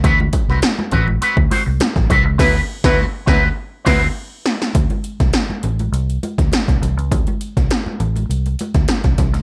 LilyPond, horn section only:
\new Staff \with { instrumentName = "Horn section" } { \time 4/4 \key d \mixolydian \tempo 4 = 102 r1 | <fis b e' b'>8 r16 <fis b e' b'>8 r16 <fis b e' b'>8 r8 <fis b e' b'>8 r4 | r1 | r1 | }